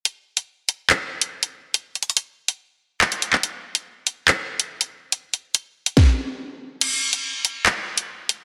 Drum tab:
CC |------------------------------------------------|------------------------------------------------|------------------------------------------------|------------------------------------------------|
HH |x--------x--------x-----x--------x-----x--------|x-----x-x-x-x--------x-----------------x--x-----|x--------x--------x-----x--------x-----x--------|x-----x-----x--------x--------------------------|
CP |------------------------x-----------------------|------------------------------------x--------x--|------------------------x-----------------------|------------------------------------------------|
SD |------------------------------------------------|------------------------------------------------|------------------------------------------------|------------------------o-----------------------|
BD |------------------------------------------------|------------------------------------------------|------------------------------------------------|------------------------o-----------------------|

CC |x-----------------------------------------------|
HH |x--------x--------x-----x--------x--------x-----|
CP |------------------------x-----------------------|
SD |------------------------------------------------|
BD |------------------------------------------------|